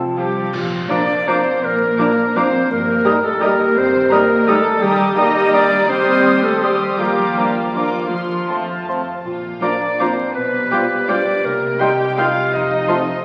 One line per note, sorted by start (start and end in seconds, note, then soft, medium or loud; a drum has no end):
0.00 0.55 F2 soft
0.00 0.18 A2 medium
0.00 0.55 C3 soft
0.00 0.35 F3 soft
0.00 0.32 C4 soft
0.00 0.36 C4 soft
0.00 0.14 F4 soft
0.00 0.32 F4 soft
0.00 1.08 F4 soft
0.00 0.18 A4 medium
0.00 0.17 C5 soft
0.00 0.36 A5 medium
0.17 0.25 F3 soft
0.17 0.51 G3 medium
0.17 0.26 C4 soft
0.17 0.27 F4 soft
0.17 0.56 G4 medium
0.17 0.51 G4 medium
0.17 0.55 C5 soft
0.37 0.70 F3 soft
0.53 0.84 A#1 medium
0.53 1.63 A#2 medium
0.53 0.89 F3 medium
0.53 0.90 F4 medium
0.53 0.92 F4 medium
0.53 concert bass drum medium
0.53 crash medium
0.72 1.45 F3 soft
0.89 0.97 F3 soft
0.89 1.04 F3 soft
0.89 1.05 A#3 medium
0.89 0.97 D4 medium
0.89 1.28 D4 medium
0.89 1.05 D4 medium
0.89 1.30 D5 medium
0.89 1.27 D5 medium
0.89 0.98 A#5 medium
0.89 1.04 A#5 medium
0.89 0.96 D6 soft
0.89 0.98 D6 medium
1.10 2.17 F4 medium
1.27 1.35 F3 soft
1.27 1.42 F3 soft
1.27 1.41 A#3 medium
1.27 1.63 C4 medium
1.27 1.35 D4 medium
1.27 1.41 D4 medium
1.27 1.66 C5 medium
1.27 1.64 C5 medium
1.27 1.98 D5 medium
1.27 1.36 A#5 medium
1.27 1.41 A#5 medium
1.27 1.36 D6 medium
1.47 2.53 F3 soft
1.63 1.93 A#1 medium
1.63 2.72 A#2 medium
1.63 2.36 A#3 medium
1.63 2.36 A#4 medium
1.63 2.38 A#4 medium
1.81 4.84 A#3 soft
1.98 2.06 F3 medium
1.98 2.13 F3 soft
1.98 2.13 A#3 medium
1.98 2.07 D4 medium
1.98 2.13 D4 medium
1.98 2.35 D5 soft
1.98 2.07 A#5 medium
1.98 2.13 A#5 medium
1.98 2.06 D6 medium
1.98 2.07 D6 medium
2.18 2.72 F4 medium
2.35 2.44 F3 medium
2.35 2.49 F3 medium
2.35 2.50 A#3 medium
2.35 2.70 C4 medium
2.35 2.44 D4 medium
2.35 2.50 D4 medium
2.35 2.71 C5 medium
2.35 2.72 D5 medium
2.35 2.49 A#5 medium
2.35 2.45 A#5 medium
2.35 2.43 D6 medium
2.35 2.45 D6 medium
2.54 2.72 F3 medium
2.70 2.99 G1 medium
2.70 3.76 G2 medium
2.70 3.22 A#3 medium
2.70 3.23 A#4 medium
2.70 3.26 A#4 medium
2.88 3.58 G3 medium
3.04 3.12 G3 medium
3.04 3.19 G3 medium
3.04 3.19 D#4 medium
3.04 3.12 G4 medium
3.04 3.42 D#5 medium
3.04 3.18 A#5 medium
3.04 3.13 A#5 medium
3.04 3.13 D#6 medium
3.04 3.12 D#6 medium
3.23 3.41 A3 medium
3.23 4.28 G4 medium
3.23 3.42 A4 medium
3.40 3.49 G3 medium
3.40 3.55 G3 medium
3.40 3.77 A#3 medium
3.40 3.55 D#4 medium
3.40 3.48 G4 medium
3.40 3.77 A#4 medium
3.40 3.79 A#4 medium
3.40 4.10 D#5 medium
3.40 3.54 A#5 medium
3.40 3.51 A#5 medium
3.40 3.48 D#6 medium
3.40 3.50 D#6 medium
3.60 4.64 G3 medium
3.76 4.05 G1 medium
3.76 4.84 G2 medium
3.76 4.12 C4 medium
3.76 4.11 C5 medium
3.76 4.14 C5 loud
3.93 4.80 D#3 medium
4.10 4.18 G3 medium
4.10 4.25 G3 medium
4.10 4.48 A#3 medium
4.10 4.25 D#4 medium
4.10 4.19 G4 medium
4.10 4.48 A#4 medium
4.10 4.50 A#4 loud
4.10 4.46 D#5 medium
4.10 4.24 A#5 medium
4.10 4.20 A#5 medium
4.10 4.18 D#6 medium
4.10 4.20 D#6 medium
4.29 5.34 G4 medium
4.47 4.55 G3 medium
4.47 4.60 G3 medium
4.47 4.61 G3 medium
4.47 4.82 A3 medium
4.47 4.60 D#4 medium
4.47 4.55 G4 medium
4.47 4.84 A4 loud
4.47 4.83 A4 medium
4.47 7.01 D#5 medium
4.47 4.60 A#5 medium
4.47 4.56 A#5 medium
4.47 4.54 D#6 medium
4.47 4.56 D#6 medium
4.65 4.98 G3 medium
4.82 6.95 D#2 medium
4.82 5.88 D#3 medium
4.82 5.14 G3 medium
4.82 5.16 G3 medium
4.82 5.14 G4 medium
4.82 5.19 G4 medium
4.82 5.17 G4 medium
4.82 5.15 A#5 medium
4.82 5.14 D#6 medium
4.99 5.70 G3 medium
5.16 5.87 G3 medium
5.16 5.30 G3 medium
5.16 5.31 G3 medium
5.16 5.30 A#3 medium
5.16 5.53 D#4 medium
5.16 5.87 G4 medium
5.16 5.53 A#4 medium
5.16 5.54 D#5 medium
5.16 5.55 D#5 loud
5.16 5.30 A#5 medium
5.16 5.88 A#5 medium
5.16 5.88 D#6 medium
5.16 5.24 D#6 medium
5.36 6.43 G4 medium
5.53 5.66 G3 medium
5.53 5.67 G3 medium
5.53 5.66 A#3 medium
5.53 5.89 D4 medium
5.53 5.91 A#4 medium
5.53 5.88 D5 loud
5.53 5.89 D5 medium
5.53 5.66 A#5 medium
5.53 5.60 D#6 medium
5.72 6.05 G3 medium
5.89 7.01 D#3 medium
5.89 6.61 G3 medium
5.89 6.44 C4 medium
5.89 6.61 G4 medium
5.89 6.45 C5 loud
5.89 6.44 C5 medium
5.89 6.61 C6 medium
5.89 6.61 D#6 medium
6.06 6.80 G3 soft
6.25 6.38 G3 medium
6.25 6.39 G3 medium
6.25 6.39 C4 medium
6.25 6.39 C6 medium
6.25 6.33 D#6 medium
6.44 6.63 A3 medium
6.44 7.01 G4 medium
6.44 6.64 A4 medium
6.44 6.63 A4 medium
6.62 6.98 G3 medium
6.62 6.76 G3 medium
6.62 6.98 G3 medium
6.62 6.75 C4 medium
6.62 6.98 G4 medium
6.62 6.99 G4 medium
6.62 7.01 C5 soft
6.62 6.76 C6 medium
6.62 6.98 C6 medium
6.62 6.98 D#6 medium
6.62 6.70 D#6 medium
6.82 7.01 G3 soft
6.99 9.03 F2 medium
6.99 8.12 F3 medium
6.99 7.75 G3 medium
6.99 7.75 A#3 medium
6.99 7.75 F4 medium
6.99 7.74 G4 medium
6.99 7.48 G4 medium
6.99 7.33 A#5 medium
6.99 7.33 D6 medium
7.18 7.94 F4 soft
7.37 7.51 F3 soft
7.37 7.52 A#3 soft
7.37 7.51 D4 soft
7.37 7.74 F5 medium
7.37 7.51 A#5 soft
7.37 7.45 D6 soft
7.57 8.69 F5 soft
7.75 8.89 F3 medium
7.75 7.90 F3 soft
7.75 7.89 A#3 soft
7.75 8.12 A#3 medium
7.75 7.89 D4 soft
7.75 8.11 F4 soft
7.75 8.89 F4 medium
7.75 8.85 F4 medium
7.75 8.14 A#4 soft
7.75 7.90 A#5 soft
7.75 7.83 D6 soft
7.75 8.12 D6 medium
7.96 8.30 F4 soft
8.12 9.07 F3 soft
8.12 11.46 F3 soft
8.12 9.05 F4 soft
8.12 8.49 C6 medium
8.31 9.06 F4 soft
8.49 8.64 F3 soft
8.49 8.64 A3 soft
8.49 8.63 C4 soft
8.49 8.87 A4 soft
8.49 9.25 A5 medium
8.49 8.64 A5 soft
8.49 8.56 C6 soft
8.70 11.46 F5 soft
8.88 9.02 F3 soft
8.88 9.02 A3 soft
8.88 9.02 C4 soft
8.88 9.27 A4 soft
8.88 9.01 A5 soft
8.88 8.95 C6 soft
9.07 11.46 F4 soft
9.25 9.55 A#1 medium
9.25 10.37 A#2 medium
9.25 9.59 F3 medium
9.25 9.59 F4 medium
9.25 9.60 F4 medium
9.43 10.17 A#3 soft
9.62 9.76 F3 soft
9.62 9.70 F3 soft
9.62 9.75 A#3 soft
9.62 9.99 D4 medium
9.62 9.76 D4 soft
9.62 9.70 F4 soft
9.62 10.00 D5 medium
9.62 9.99 D5 soft
9.62 9.99 D5 medium
9.62 9.70 A#5 soft
9.62 9.76 A#5 soft
9.62 9.70 D6 soft
9.62 9.69 D6 soft
9.81 10.37 A#4 soft
9.99 10.12 F3 soft
9.99 10.07 F3 soft
9.99 10.14 A#3 soft
9.99 10.34 C4 medium
9.99 10.13 D4 soft
9.99 10.08 F4 soft
9.99 10.34 C5 medium
9.99 10.36 C5 medium
9.99 10.70 D5 soft
9.99 10.07 A#5 soft
9.99 10.13 A#5 soft
9.99 10.06 D6 soft
9.99 10.07 D6 soft
10.18 10.37 A#3 soft
10.34 10.65 B1 medium
10.34 11.45 B2 medium
10.34 11.09 B3 medium
10.34 11.07 B4 medium
10.34 11.11 B4 medium
10.53 11.25 G3 soft
10.71 10.85 F3 soft
10.71 10.79 G3 soft
10.71 10.86 G3 soft
10.71 10.79 F4 soft
10.71 10.85 F4 soft
10.71 11.07 D5 soft
10.71 10.79 G5 soft
10.71 10.85 G5 soft
10.71 10.79 D6 soft
10.71 10.78 D6 soft
10.90 11.98 G4 soft
11.08 11.22 F3 soft
11.08 11.16 G3 soft
11.08 11.22 G3 soft
11.08 11.44 D4 medium
11.08 11.17 F4 soft
11.08 11.22 F4 soft
11.08 11.45 D5 soft
11.08 11.44 D5 medium
11.08 11.46 D5 medium
11.08 11.16 G5 soft
11.08 11.22 G5 soft
11.08 11.16 D6 soft
11.08 11.15 D6 soft
11.27 11.60 G3 soft
11.44 11.74 C2 medium
11.44 12.54 C3 medium
11.44 11.80 A#3 medium
11.44 11.81 A#4 medium
11.44 11.83 A#4 medium
11.62 12.35 G3 soft
11.80 11.94 D#3 soft
11.80 11.89 G3 soft
11.80 11.95 G3 soft
11.80 11.94 D#4 soft
11.80 11.89 D#4 soft
11.80 12.18 G4 medium
11.80 12.17 C5 soft
11.80 12.17 G5 medium
11.80 11.88 G5 soft
11.80 11.94 G5 medium
11.80 12.18 G5 medium
11.80 11.88 C6 soft
11.80 11.88 C6 medium
12.17 12.31 D#3 medium
12.17 12.26 G3 medium
12.17 12.31 G3 medium
12.17 12.26 D#4 medium
12.17 12.31 D#4 medium
12.17 12.53 F4 medium
12.17 12.88 C5 soft
12.17 12.52 F5 medium
12.17 12.25 G5 medium
12.17 12.31 G5 medium
12.17 12.26 C6 soft
12.36 12.55 G3 soft
12.53 12.82 F2 medium
12.53 13.25 F2 medium
12.53 13.25 D#4 medium
12.53 13.25 D#5 medium
12.71 13.25 A3 soft
12.88 12.96 F3 medium
12.88 13.02 F3 medium
12.88 13.02 A3 medium
12.88 13.03 C4 medium
12.88 12.96 F4 medium
12.88 13.24 C5 medium
12.88 12.96 A5 soft
12.88 13.02 A5 medium
12.88 12.96 C6 medium
12.88 12.95 C6 medium
13.07 13.25 A4 medium